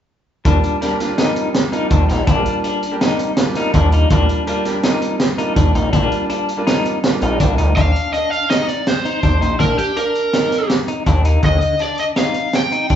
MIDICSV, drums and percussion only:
0, 0, Header, 1, 2, 480
1, 0, Start_track
1, 0, Key_signature, -3, "major"
1, 0, Tempo, 366300
1, 590, Time_signature, 5, 2, 24, 8
1, 16976, End_track
2, 0, Start_track
2, 0, Title_t, "Drums"
2, 593, Note_on_c, 9, 36, 96
2, 595, Note_on_c, 9, 42, 74
2, 724, Note_off_c, 9, 36, 0
2, 726, Note_off_c, 9, 42, 0
2, 837, Note_on_c, 9, 42, 54
2, 968, Note_off_c, 9, 42, 0
2, 1075, Note_on_c, 9, 38, 32
2, 1075, Note_on_c, 9, 42, 71
2, 1206, Note_off_c, 9, 38, 0
2, 1206, Note_off_c, 9, 42, 0
2, 1315, Note_on_c, 9, 38, 30
2, 1315, Note_on_c, 9, 42, 60
2, 1446, Note_off_c, 9, 38, 0
2, 1446, Note_off_c, 9, 42, 0
2, 1548, Note_on_c, 9, 38, 93
2, 1548, Note_on_c, 9, 42, 73
2, 1679, Note_off_c, 9, 38, 0
2, 1679, Note_off_c, 9, 42, 0
2, 1785, Note_on_c, 9, 42, 62
2, 1916, Note_off_c, 9, 42, 0
2, 2026, Note_on_c, 9, 38, 105
2, 2026, Note_on_c, 9, 42, 77
2, 2157, Note_off_c, 9, 38, 0
2, 2157, Note_off_c, 9, 42, 0
2, 2268, Note_on_c, 9, 42, 58
2, 2399, Note_off_c, 9, 42, 0
2, 2497, Note_on_c, 9, 42, 73
2, 2501, Note_on_c, 9, 36, 89
2, 2628, Note_off_c, 9, 42, 0
2, 2632, Note_off_c, 9, 36, 0
2, 2745, Note_on_c, 9, 38, 31
2, 2745, Note_on_c, 9, 42, 52
2, 2876, Note_off_c, 9, 38, 0
2, 2876, Note_off_c, 9, 42, 0
2, 2978, Note_on_c, 9, 42, 68
2, 2979, Note_on_c, 9, 36, 97
2, 3109, Note_off_c, 9, 42, 0
2, 3110, Note_off_c, 9, 36, 0
2, 3220, Note_on_c, 9, 42, 56
2, 3351, Note_off_c, 9, 42, 0
2, 3460, Note_on_c, 9, 42, 72
2, 3591, Note_off_c, 9, 42, 0
2, 3705, Note_on_c, 9, 42, 53
2, 3836, Note_off_c, 9, 42, 0
2, 3946, Note_on_c, 9, 38, 90
2, 3946, Note_on_c, 9, 42, 63
2, 4077, Note_off_c, 9, 38, 0
2, 4077, Note_off_c, 9, 42, 0
2, 4183, Note_on_c, 9, 42, 56
2, 4314, Note_off_c, 9, 42, 0
2, 4414, Note_on_c, 9, 38, 100
2, 4414, Note_on_c, 9, 42, 75
2, 4545, Note_off_c, 9, 38, 0
2, 4545, Note_off_c, 9, 42, 0
2, 4657, Note_on_c, 9, 38, 31
2, 4657, Note_on_c, 9, 42, 54
2, 4788, Note_off_c, 9, 38, 0
2, 4788, Note_off_c, 9, 42, 0
2, 4897, Note_on_c, 9, 42, 73
2, 4901, Note_on_c, 9, 36, 85
2, 5028, Note_off_c, 9, 42, 0
2, 5032, Note_off_c, 9, 36, 0
2, 5140, Note_on_c, 9, 42, 56
2, 5271, Note_off_c, 9, 42, 0
2, 5376, Note_on_c, 9, 42, 76
2, 5381, Note_on_c, 9, 36, 97
2, 5507, Note_off_c, 9, 42, 0
2, 5512, Note_off_c, 9, 36, 0
2, 5625, Note_on_c, 9, 42, 56
2, 5756, Note_off_c, 9, 42, 0
2, 5862, Note_on_c, 9, 42, 74
2, 5993, Note_off_c, 9, 42, 0
2, 6098, Note_on_c, 9, 38, 32
2, 6098, Note_on_c, 9, 42, 61
2, 6229, Note_off_c, 9, 38, 0
2, 6229, Note_off_c, 9, 42, 0
2, 6336, Note_on_c, 9, 38, 97
2, 6336, Note_on_c, 9, 42, 75
2, 6467, Note_off_c, 9, 38, 0
2, 6467, Note_off_c, 9, 42, 0
2, 6577, Note_on_c, 9, 42, 57
2, 6708, Note_off_c, 9, 42, 0
2, 6811, Note_on_c, 9, 38, 98
2, 6811, Note_on_c, 9, 42, 77
2, 6943, Note_off_c, 9, 38, 0
2, 6943, Note_off_c, 9, 42, 0
2, 7056, Note_on_c, 9, 42, 57
2, 7187, Note_off_c, 9, 42, 0
2, 7291, Note_on_c, 9, 36, 93
2, 7293, Note_on_c, 9, 42, 71
2, 7422, Note_off_c, 9, 36, 0
2, 7424, Note_off_c, 9, 42, 0
2, 7538, Note_on_c, 9, 42, 55
2, 7669, Note_off_c, 9, 42, 0
2, 7773, Note_on_c, 9, 36, 90
2, 7775, Note_on_c, 9, 42, 75
2, 7904, Note_off_c, 9, 36, 0
2, 7906, Note_off_c, 9, 42, 0
2, 8017, Note_on_c, 9, 42, 52
2, 8148, Note_off_c, 9, 42, 0
2, 8253, Note_on_c, 9, 42, 69
2, 8384, Note_off_c, 9, 42, 0
2, 8502, Note_on_c, 9, 42, 55
2, 8633, Note_off_c, 9, 42, 0
2, 8745, Note_on_c, 9, 38, 98
2, 8745, Note_on_c, 9, 42, 68
2, 8876, Note_off_c, 9, 38, 0
2, 8876, Note_off_c, 9, 42, 0
2, 8984, Note_on_c, 9, 42, 55
2, 9115, Note_off_c, 9, 42, 0
2, 9222, Note_on_c, 9, 38, 102
2, 9222, Note_on_c, 9, 42, 75
2, 9354, Note_off_c, 9, 38, 0
2, 9354, Note_off_c, 9, 42, 0
2, 9456, Note_on_c, 9, 42, 58
2, 9587, Note_off_c, 9, 42, 0
2, 9697, Note_on_c, 9, 42, 76
2, 9699, Note_on_c, 9, 36, 86
2, 9828, Note_off_c, 9, 42, 0
2, 9830, Note_off_c, 9, 36, 0
2, 9935, Note_on_c, 9, 42, 58
2, 10066, Note_off_c, 9, 42, 0
2, 10182, Note_on_c, 9, 36, 88
2, 10187, Note_on_c, 9, 42, 68
2, 10313, Note_off_c, 9, 36, 0
2, 10318, Note_off_c, 9, 42, 0
2, 10431, Note_on_c, 9, 42, 50
2, 10562, Note_off_c, 9, 42, 0
2, 10667, Note_on_c, 9, 42, 69
2, 10798, Note_off_c, 9, 42, 0
2, 10911, Note_on_c, 9, 42, 49
2, 11042, Note_off_c, 9, 42, 0
2, 11144, Note_on_c, 9, 38, 88
2, 11144, Note_on_c, 9, 42, 63
2, 11275, Note_off_c, 9, 38, 0
2, 11275, Note_off_c, 9, 42, 0
2, 11382, Note_on_c, 9, 42, 50
2, 11513, Note_off_c, 9, 42, 0
2, 11622, Note_on_c, 9, 38, 91
2, 11622, Note_on_c, 9, 42, 67
2, 11753, Note_off_c, 9, 38, 0
2, 11753, Note_off_c, 9, 42, 0
2, 11864, Note_on_c, 9, 42, 50
2, 11995, Note_off_c, 9, 42, 0
2, 12098, Note_on_c, 9, 36, 85
2, 12101, Note_on_c, 9, 42, 63
2, 12229, Note_off_c, 9, 36, 0
2, 12232, Note_off_c, 9, 42, 0
2, 12346, Note_on_c, 9, 42, 49
2, 12477, Note_off_c, 9, 42, 0
2, 12580, Note_on_c, 9, 36, 86
2, 12586, Note_on_c, 9, 42, 68
2, 12711, Note_off_c, 9, 36, 0
2, 12717, Note_off_c, 9, 42, 0
2, 12822, Note_on_c, 9, 42, 53
2, 12953, Note_off_c, 9, 42, 0
2, 13061, Note_on_c, 9, 42, 69
2, 13192, Note_off_c, 9, 42, 0
2, 13306, Note_on_c, 9, 42, 50
2, 13437, Note_off_c, 9, 42, 0
2, 13542, Note_on_c, 9, 38, 84
2, 13542, Note_on_c, 9, 42, 68
2, 13673, Note_off_c, 9, 38, 0
2, 13673, Note_off_c, 9, 42, 0
2, 13787, Note_on_c, 9, 38, 28
2, 13787, Note_on_c, 9, 42, 53
2, 13918, Note_off_c, 9, 38, 0
2, 13918, Note_off_c, 9, 42, 0
2, 14018, Note_on_c, 9, 38, 96
2, 14018, Note_on_c, 9, 42, 70
2, 14149, Note_off_c, 9, 38, 0
2, 14149, Note_off_c, 9, 42, 0
2, 14258, Note_on_c, 9, 42, 53
2, 14389, Note_off_c, 9, 42, 0
2, 14497, Note_on_c, 9, 42, 69
2, 14500, Note_on_c, 9, 36, 84
2, 14628, Note_off_c, 9, 42, 0
2, 14631, Note_off_c, 9, 36, 0
2, 14740, Note_on_c, 9, 42, 52
2, 14871, Note_off_c, 9, 42, 0
2, 14975, Note_on_c, 9, 42, 65
2, 14980, Note_on_c, 9, 36, 88
2, 15106, Note_off_c, 9, 42, 0
2, 15111, Note_off_c, 9, 36, 0
2, 15213, Note_on_c, 9, 42, 49
2, 15344, Note_off_c, 9, 42, 0
2, 15453, Note_on_c, 9, 42, 64
2, 15584, Note_off_c, 9, 42, 0
2, 15696, Note_on_c, 9, 42, 52
2, 15827, Note_off_c, 9, 42, 0
2, 15937, Note_on_c, 9, 38, 83
2, 15937, Note_on_c, 9, 42, 62
2, 16068, Note_off_c, 9, 38, 0
2, 16068, Note_off_c, 9, 42, 0
2, 16174, Note_on_c, 9, 42, 51
2, 16305, Note_off_c, 9, 42, 0
2, 16425, Note_on_c, 9, 38, 93
2, 16425, Note_on_c, 9, 42, 68
2, 16556, Note_off_c, 9, 38, 0
2, 16556, Note_off_c, 9, 42, 0
2, 16671, Note_on_c, 9, 42, 50
2, 16802, Note_off_c, 9, 42, 0
2, 16901, Note_on_c, 9, 42, 60
2, 16907, Note_on_c, 9, 36, 81
2, 16976, Note_off_c, 9, 36, 0
2, 16976, Note_off_c, 9, 42, 0
2, 16976, End_track
0, 0, End_of_file